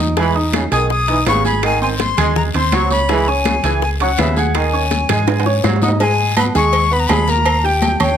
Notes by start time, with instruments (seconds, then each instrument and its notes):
Already playing: fingered electric bass E2
0.00 grand piano D#4 D#5 D#6
0.16 trombone section E3, grand piano G#3 G#4 G#5, flute B5, high bongo, high conga, high timbale, long guiro
0.35 grand piano D#4 D#5 D#6, high conga
0.53 trombone section C#3, high bongo, high conga, high timbale, short guiro, claves
0.71 fingered electric bass B1, trombone section D#3, grand piano G#4 G#5 G#6, flute D#6, high bongo, high conga, high timbale, short guiro
0.90 flute D#6, high bongo, high conga, long guiro
1.08 trombone section E3, grand piano D#4 D#5 D#6, high bongo, high conga, high timbale
1.26 fingered electric bass G#1, trombone section C#3, grand piano B3 B4 B5, flute C#6, high bongo, low bongo, high conga, high timbale, low timbale, short guiro, claves
1.45 grand piano G#4 G#5 G#6, flute B5, high bongo, high conga, short guiro
1.63 trombone section D#3, flute G#5, high bongo, high conga, high timbale, long guiro, claves
1.81 grand piano C4 C5 C6, flute G#5, high conga
1.99 flute C6, high bongo, high conga, high timbale, short guiro
2.17 fingered electric bass D#2, trombone section G#3, grand piano G#4 G#5 G#6, high bongo, high conga, low conga, high timbale, short guiro, claves
2.36 flute A#5, high bongo, high conga, low conga, long guiro
2.54 fingered electric bass D#2, grand piano C4 C5 C6, flute C6, high bongo, high conga, high timbale
2.72 fingered electric bass C#2, trombone section F#3, flute C#6, high bongo, low bongo, high conga, high timbale, low timbale, short guiro, claves
2.90 grand piano C#4 C#5 C#6, flute B5, high bongo, high conga, short guiro
3.09 trombone section E3, grand piano G#3 G#4 G#5, high bongo, high conga, high timbale, long guiro
3.27 grand piano C#4 C#5 C#6, flute G#5, high conga
3.45 trombone section C#3, high bongo, high conga, high timbale, short guiro, claves
3.63 fingered electric bass C#2, trombone section E3, grand piano G#4 G#5 G#6, high bongo, high conga, high timbale, short guiro
3.82 flute G#5, high bongo, high conga, long guiro
4.00 trombone section F#3, grand piano C#4 C#5 C#6, flute F#5, high bongo, high conga, high timbale
4.18 fingered electric bass D#2, trombone section C#3, grand piano B3 B4 B5, flute E5, high bongo, low bongo, high conga, high timbale, low timbale, short guiro, claves
4.36 grand piano G#4 G#5 G#6, flute F#5, high bongo, high conga, short guiro
4.54 trombone section D#3, flute G#5, high bongo, high conga, high timbale, long guiro, claves
4.73 grand piano C#4 C#5 C#6, high conga
4.91 high bongo, high conga, high timbale, short guiro
5.09 fingered electric bass G#2, trombone section G#3, grand piano G#4 G#5 G#6, high bongo, high conga, low conga, high timbale, short guiro, claves
5.27 low bongo, high conga, high timbale, long guiro
5.40 high timbale
5.46 grand piano C#4 C#5 C#6, low bongo, high conga
5.63 fingered electric bass G#2, trombone section F#3, low bongo, high conga, low timbale, short guiro, claves
5.76 low timbale
5.82 grand piano D#4 D#5 D#6, flute F#5, low bongo, high conga, short guiro
5.88 low timbale
6.00 grand piano G#3 G#4 G#5, flute G#5, cowbell, high conga, low agogo, long guiro
6.19 high conga
6.37 grand piano B3 B4 B5, flute B5, cowbell, high conga, low timbale, low agogo, short guiro, claves
6.55 fingered electric bass D#2, grand piano G#3 G#4 G#5, flute C#6, cowbell, high conga, short guiro
6.73 cowbell, high conga, low agogo, long guiro
6.91 grand piano B3 B4 B5, flute B5, high conga
7.00 flute A#5
7.07 fingered electric bass D#2, grand piano G#3 G#4 G#5, flute B5, cowbell, high conga, low timbale, low agogo, short guiro, claves
7.28 grand piano A#3 A#4 A#5, flute A#5, cowbell, high conga, short guiro
7.45 cowbell, high conga, low agogo, long guiro, claves
7.64 grand piano G4 G5 G6, flute G5, high conga
7.82 cowbell, high conga, low timbale, low agogo, short guiro
8.00 fingered electric bass D#2, grand piano C#4 C#5 C#6, flute G5, high conga, low conga, low agogo, short guiro, claves